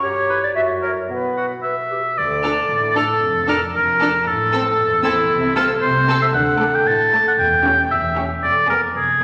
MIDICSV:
0, 0, Header, 1, 10, 480
1, 0, Start_track
1, 0, Key_signature, -1, "minor"
1, 0, Tempo, 535236
1, 29, Time_signature, 2, 2, 24, 8
1, 1949, Tempo, 523104
1, 8432, End_track
2, 0, Start_track
2, 0, Title_t, "Violin section"
2, 0, Program_c, 0, 48
2, 2189, Note_on_c, 0, 89, 43
2, 2263, Note_off_c, 0, 89, 0
2, 2678, Note_on_c, 0, 89, 41
2, 2752, Note_off_c, 0, 89, 0
2, 3154, Note_on_c, 0, 89, 48
2, 3227, Note_off_c, 0, 89, 0
2, 3646, Note_on_c, 0, 89, 46
2, 3719, Note_off_c, 0, 89, 0
2, 4112, Note_on_c, 0, 88, 49
2, 4185, Note_off_c, 0, 88, 0
2, 4574, Note_on_c, 0, 88, 51
2, 4647, Note_off_c, 0, 88, 0
2, 5054, Note_on_c, 0, 88, 55
2, 5128, Note_off_c, 0, 88, 0
2, 5541, Note_on_c, 0, 88, 53
2, 5614, Note_off_c, 0, 88, 0
2, 6019, Note_on_c, 0, 86, 62
2, 6193, Note_off_c, 0, 86, 0
2, 6505, Note_on_c, 0, 86, 59
2, 6676, Note_off_c, 0, 86, 0
2, 6980, Note_on_c, 0, 85, 59
2, 7153, Note_off_c, 0, 85, 0
2, 7448, Note_on_c, 0, 85, 51
2, 7628, Note_off_c, 0, 85, 0
2, 7946, Note_on_c, 0, 86, 50
2, 8124, Note_off_c, 0, 86, 0
2, 8432, End_track
3, 0, Start_track
3, 0, Title_t, "Flute"
3, 0, Program_c, 1, 73
3, 15, Note_on_c, 1, 73, 82
3, 390, Note_on_c, 1, 74, 60
3, 404, Note_off_c, 1, 73, 0
3, 482, Note_off_c, 1, 74, 0
3, 488, Note_on_c, 1, 76, 78
3, 543, Note_off_c, 1, 76, 0
3, 737, Note_on_c, 1, 73, 64
3, 791, Note_off_c, 1, 73, 0
3, 983, Note_on_c, 1, 71, 55
3, 1455, Note_off_c, 1, 71, 0
3, 8432, End_track
4, 0, Start_track
4, 0, Title_t, "Oboe"
4, 0, Program_c, 2, 68
4, 263, Note_on_c, 2, 71, 51
4, 348, Note_off_c, 2, 71, 0
4, 736, Note_on_c, 2, 70, 46
4, 824, Note_off_c, 2, 70, 0
4, 1223, Note_on_c, 2, 66, 38
4, 1310, Note_off_c, 2, 66, 0
4, 1459, Note_on_c, 2, 76, 61
4, 1953, Note_on_c, 2, 74, 61
4, 1967, Note_off_c, 2, 76, 0
4, 2671, Note_off_c, 2, 74, 0
4, 2676, Note_on_c, 2, 69, 62
4, 3144, Note_off_c, 2, 69, 0
4, 3154, Note_on_c, 2, 70, 65
4, 3262, Note_off_c, 2, 70, 0
4, 3399, Note_on_c, 2, 70, 80
4, 3872, Note_on_c, 2, 69, 69
4, 3886, Note_off_c, 2, 70, 0
4, 4576, Note_off_c, 2, 69, 0
4, 4581, Note_on_c, 2, 64, 75
4, 5049, Note_off_c, 2, 64, 0
4, 5057, Note_on_c, 2, 65, 75
4, 5164, Note_off_c, 2, 65, 0
4, 5292, Note_on_c, 2, 72, 90
4, 5643, Note_off_c, 2, 72, 0
4, 5662, Note_on_c, 2, 76, 77
4, 5714, Note_off_c, 2, 76, 0
4, 5769, Note_on_c, 2, 78, 83
4, 6145, Note_on_c, 2, 79, 78
4, 6159, Note_off_c, 2, 78, 0
4, 6262, Note_on_c, 2, 81, 90
4, 6275, Note_off_c, 2, 79, 0
4, 6615, Note_off_c, 2, 81, 0
4, 6631, Note_on_c, 2, 78, 68
4, 6680, Note_off_c, 2, 78, 0
4, 6733, Note_on_c, 2, 79, 84
4, 7200, Note_off_c, 2, 79, 0
4, 7214, Note_on_c, 2, 76, 74
4, 7518, Note_off_c, 2, 76, 0
4, 7690, Note_on_c, 2, 74, 70
4, 7918, Note_off_c, 2, 74, 0
4, 7933, Note_on_c, 2, 70, 62
4, 8044, Note_off_c, 2, 70, 0
4, 8179, Note_on_c, 2, 68, 53
4, 8432, Note_off_c, 2, 68, 0
4, 8432, End_track
5, 0, Start_track
5, 0, Title_t, "Violin section"
5, 0, Program_c, 3, 48
5, 2188, Note_on_c, 3, 69, 44
5, 2261, Note_off_c, 3, 69, 0
5, 2663, Note_on_c, 3, 69, 47
5, 2737, Note_off_c, 3, 69, 0
5, 3150, Note_on_c, 3, 69, 47
5, 3224, Note_off_c, 3, 69, 0
5, 3631, Note_on_c, 3, 69, 49
5, 3704, Note_off_c, 3, 69, 0
5, 4114, Note_on_c, 3, 69, 52
5, 4187, Note_off_c, 3, 69, 0
5, 4588, Note_on_c, 3, 69, 55
5, 4662, Note_off_c, 3, 69, 0
5, 5057, Note_on_c, 3, 69, 57
5, 5130, Note_off_c, 3, 69, 0
5, 5540, Note_on_c, 3, 69, 57
5, 5613, Note_off_c, 3, 69, 0
5, 6010, Note_on_c, 3, 69, 62
5, 6189, Note_off_c, 3, 69, 0
5, 6497, Note_on_c, 3, 69, 60
5, 6672, Note_off_c, 3, 69, 0
5, 6974, Note_on_c, 3, 67, 59
5, 7149, Note_off_c, 3, 67, 0
5, 7446, Note_on_c, 3, 67, 57
5, 7628, Note_off_c, 3, 67, 0
5, 7936, Note_on_c, 3, 68, 50
5, 8118, Note_off_c, 3, 68, 0
5, 8432, End_track
6, 0, Start_track
6, 0, Title_t, "Clarinet"
6, 0, Program_c, 4, 71
6, 27, Note_on_c, 4, 67, 62
6, 374, Note_off_c, 4, 67, 0
6, 492, Note_on_c, 4, 66, 64
6, 896, Note_off_c, 4, 66, 0
6, 975, Note_on_c, 4, 59, 53
6, 1380, Note_off_c, 4, 59, 0
6, 1459, Note_on_c, 4, 71, 46
6, 1570, Note_off_c, 4, 71, 0
6, 1711, Note_on_c, 4, 67, 40
6, 1819, Note_off_c, 4, 67, 0
6, 8432, End_track
7, 0, Start_track
7, 0, Title_t, "Viola section"
7, 0, Program_c, 5, 48
7, 2190, Note_on_c, 5, 62, 45
7, 2263, Note_off_c, 5, 62, 0
7, 2666, Note_on_c, 5, 62, 43
7, 2740, Note_off_c, 5, 62, 0
7, 3146, Note_on_c, 5, 62, 50
7, 3219, Note_off_c, 5, 62, 0
7, 3633, Note_on_c, 5, 62, 50
7, 3706, Note_off_c, 5, 62, 0
7, 4117, Note_on_c, 5, 60, 53
7, 4190, Note_off_c, 5, 60, 0
7, 4575, Note_on_c, 5, 60, 51
7, 4648, Note_off_c, 5, 60, 0
7, 5059, Note_on_c, 5, 60, 58
7, 5133, Note_off_c, 5, 60, 0
7, 5530, Note_on_c, 5, 60, 52
7, 5604, Note_off_c, 5, 60, 0
7, 6009, Note_on_c, 5, 57, 63
7, 6188, Note_off_c, 5, 57, 0
7, 6488, Note_on_c, 5, 57, 60
7, 6667, Note_off_c, 5, 57, 0
7, 6963, Note_on_c, 5, 61, 61
7, 7143, Note_off_c, 5, 61, 0
7, 7452, Note_on_c, 5, 61, 51
7, 7631, Note_off_c, 5, 61, 0
7, 7939, Note_on_c, 5, 59, 51
7, 8120, Note_off_c, 5, 59, 0
7, 8432, End_track
8, 0, Start_track
8, 0, Title_t, "Harp"
8, 0, Program_c, 6, 46
8, 31, Note_on_c, 6, 43, 57
8, 263, Note_on_c, 6, 64, 45
8, 268, Note_on_c, 6, 71, 49
8, 497, Note_on_c, 6, 42, 55
8, 519, Note_off_c, 6, 43, 0
8, 519, Note_off_c, 6, 71, 0
8, 735, Note_on_c, 6, 66, 38
8, 741, Note_on_c, 6, 70, 42
8, 975, Note_on_c, 6, 47, 47
8, 999, Note_off_c, 6, 42, 0
8, 1000, Note_off_c, 6, 70, 0
8, 1001, Note_off_c, 6, 64, 0
8, 1213, Note_off_c, 6, 66, 0
8, 1462, Note_on_c, 6, 67, 27
8, 1708, Note_on_c, 6, 66, 30
8, 1877, Note_off_c, 6, 67, 0
8, 1949, Note_on_c, 6, 50, 47
8, 1966, Note_off_c, 6, 47, 0
8, 1969, Note_off_c, 6, 66, 0
8, 2193, Note_on_c, 6, 69, 44
8, 2428, Note_on_c, 6, 57, 39
8, 2658, Note_off_c, 6, 69, 0
8, 2902, Note_on_c, 6, 53, 48
8, 2928, Note_off_c, 6, 50, 0
8, 3386, Note_on_c, 6, 62, 42
8, 3624, Note_on_c, 6, 74, 48
8, 3864, Note_on_c, 6, 45, 59
8, 3887, Note_off_c, 6, 53, 0
8, 3887, Note_off_c, 6, 74, 0
8, 3888, Note_off_c, 6, 62, 0
8, 4110, Note_on_c, 6, 69, 47
8, 4341, Note_on_c, 6, 52, 45
8, 4567, Note_off_c, 6, 69, 0
8, 4578, Note_on_c, 6, 69, 50
8, 4813, Note_on_c, 6, 48, 61
8, 4838, Note_off_c, 6, 45, 0
8, 4838, Note_off_c, 6, 52, 0
8, 5043, Note_off_c, 6, 69, 0
8, 5281, Note_off_c, 6, 57, 0
8, 5292, Note_on_c, 6, 57, 47
8, 5529, Note_on_c, 6, 69, 49
8, 5768, Note_on_c, 6, 50, 59
8, 5787, Note_off_c, 6, 48, 0
8, 5995, Note_off_c, 6, 69, 0
8, 6006, Note_on_c, 6, 69, 50
8, 6234, Note_off_c, 6, 57, 0
8, 6245, Note_on_c, 6, 57, 48
8, 6477, Note_off_c, 6, 69, 0
8, 6729, Note_on_c, 6, 40, 59
8, 6746, Note_off_c, 6, 57, 0
8, 6747, Note_off_c, 6, 50, 0
8, 7209, Note_on_c, 6, 52, 44
8, 7446, Note_on_c, 6, 73, 44
8, 7689, Note_on_c, 6, 41, 55
8, 7710, Note_off_c, 6, 40, 0
8, 7710, Note_off_c, 6, 73, 0
8, 7711, Note_off_c, 6, 52, 0
8, 7935, Note_on_c, 6, 71, 41
8, 8176, Note_on_c, 6, 53, 37
8, 8410, Note_off_c, 6, 71, 0
8, 8432, Note_off_c, 6, 41, 0
8, 8432, Note_off_c, 6, 53, 0
8, 8432, End_track
9, 0, Start_track
9, 0, Title_t, "Cello section"
9, 0, Program_c, 7, 48
9, 1955, Note_on_c, 7, 38, 54
9, 2353, Note_off_c, 7, 38, 0
9, 2430, Note_on_c, 7, 45, 53
9, 2828, Note_off_c, 7, 45, 0
9, 2903, Note_on_c, 7, 41, 53
9, 3308, Note_off_c, 7, 41, 0
9, 3393, Note_on_c, 7, 41, 55
9, 3792, Note_off_c, 7, 41, 0
9, 3873, Note_on_c, 7, 45, 60
9, 4270, Note_off_c, 7, 45, 0
9, 4347, Note_on_c, 7, 40, 61
9, 4742, Note_off_c, 7, 40, 0
9, 4815, Note_on_c, 7, 48, 69
9, 5214, Note_off_c, 7, 48, 0
9, 5291, Note_on_c, 7, 48, 66
9, 5690, Note_off_c, 7, 48, 0
9, 5771, Note_on_c, 7, 50, 75
9, 6150, Note_off_c, 7, 50, 0
9, 6252, Note_on_c, 7, 45, 70
9, 6630, Note_off_c, 7, 45, 0
9, 6727, Note_on_c, 7, 40, 69
9, 7106, Note_off_c, 7, 40, 0
9, 7206, Note_on_c, 7, 40, 66
9, 7589, Note_off_c, 7, 40, 0
9, 7693, Note_on_c, 7, 41, 62
9, 8079, Note_off_c, 7, 41, 0
9, 8178, Note_on_c, 7, 41, 57
9, 8432, Note_off_c, 7, 41, 0
9, 8432, End_track
10, 0, Start_track
10, 0, Title_t, "Double bass section"
10, 0, Program_c, 8, 48
10, 1947, Note_on_c, 8, 38, 54
10, 2349, Note_off_c, 8, 38, 0
10, 2427, Note_on_c, 8, 33, 51
10, 2827, Note_off_c, 8, 33, 0
10, 2906, Note_on_c, 8, 29, 56
10, 3310, Note_off_c, 8, 29, 0
10, 3387, Note_on_c, 8, 29, 55
10, 3789, Note_off_c, 8, 29, 0
10, 3875, Note_on_c, 8, 33, 62
10, 4271, Note_off_c, 8, 33, 0
10, 4344, Note_on_c, 8, 28, 62
10, 4741, Note_off_c, 8, 28, 0
10, 4819, Note_on_c, 8, 36, 71
10, 5216, Note_off_c, 8, 36, 0
10, 5292, Note_on_c, 8, 36, 63
10, 5690, Note_off_c, 8, 36, 0
10, 5761, Note_on_c, 8, 38, 73
10, 6144, Note_off_c, 8, 38, 0
10, 6238, Note_on_c, 8, 33, 68
10, 6622, Note_off_c, 8, 33, 0
10, 6729, Note_on_c, 8, 28, 71
10, 7107, Note_off_c, 8, 28, 0
10, 7199, Note_on_c, 8, 28, 64
10, 7585, Note_off_c, 8, 28, 0
10, 7689, Note_on_c, 8, 29, 62
10, 8077, Note_off_c, 8, 29, 0
10, 8177, Note_on_c, 8, 29, 52
10, 8432, Note_off_c, 8, 29, 0
10, 8432, End_track
0, 0, End_of_file